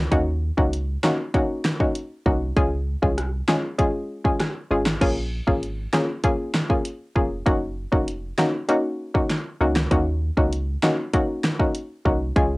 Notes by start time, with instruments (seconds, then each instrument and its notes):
0.11 sub bass D#2, synth pluck A#3 C#4 D#4 F#4, kick, closed hi-hat
0.57 sub bass C#2, synth pluck A#3 C#4 D#4 F#4, kick
0.73 closed hi-hat
1.03 synth pluck A#3 C#4 D#4 F#4, snare
1.34 synth pluck A#3 C#4 D#4 F#4, kick, closed hi-hat
1.65 snare
1.80 synth pluck A#3 C#4 D#4 F#4, kick
1.95 closed hi-hat
2.26 sub bass C2, synth pluck A#3 C#4 D#4 F#4, kick
2.56 sub bass C#2, synth pluck G#3 C#4 F4 G#4, kick, closed hi-hat
3.02 sub bass C2, synth pluck G#3 C#4 F4 G#4, kick
3.18 cross-stick, closed hi-hat
3.48 synth pluck G#3 C#4 F4 G#4, snare
3.79 synth pluck G#3 C#4 F4 G#4, kick, closed hi-hat
4.24 synth pluck G#3 C#4 F4 G#4, kick
4.40 cross-stick, snare, closed hi-hat
4.71 sub bass G#1, synth pluck G#3 C#4 F4 G#4
4.86 snare
5.01 sub bass A#1, synth pluck A#3 C#4 F4 G#4, kick, closed hi-hat, crash
5.47 sub bass G#1, synth pluck A#3 C#4 F4 G#4, kick
5.63 closed hi-hat
5.93 synth pluck A#3 C#4 F4 G#4, snare
6.24 synth pluck A#3 C#4 F4 G#4, kick, closed hi-hat
6.54 snare
6.70 synth pluck A#3 C#4 F4 G#4, kick
6.85 closed hi-hat
7.16 sub bass F1, synth pluck A#3 C#4 F4 G#4, kick
7.46 sub bass F#1, synth pluck A#3 C#4 D#4 F#4, kick, closed hi-hat
7.92 sub bass F1, synth pluck A#3 C#4 D#4 F#4, kick
8.08 closed hi-hat
8.38 synth pluck A#3 C#4 D#4 F#4, snare
8.69 synth pluck A#3 C#4 D#4 F#4, closed hi-hat
9.14 synth pluck A#3 C#4 D#4 F#4, kick
9.30 snare, closed hi-hat
9.61 sub bass C#2, synth pluck A#3 C#4 D#4 F#4
9.76 snare
9.91 sub bass D#2, synth pluck A#3 C#4 D#4 F#4, kick, closed hi-hat
10.37 sub bass C#2, synth pluck A#3 C#4 D#4 F#4, kick
10.53 closed hi-hat
10.83 synth pluck A#3 C#4 D#4 F#4, snare
11.13 synth pluck A#3 C#4 D#4 F#4, kick, closed hi-hat
11.44 snare
11.59 synth pluck A#3 C#4 D#4 F#4, kick
11.75 closed hi-hat
12.05 sub bass C2, synth pluck A#3 C#4 D#4 F#4, kick
12.36 sub bass C#2, synth pluck G#3 C#4 F4 G#4, kick, closed hi-hat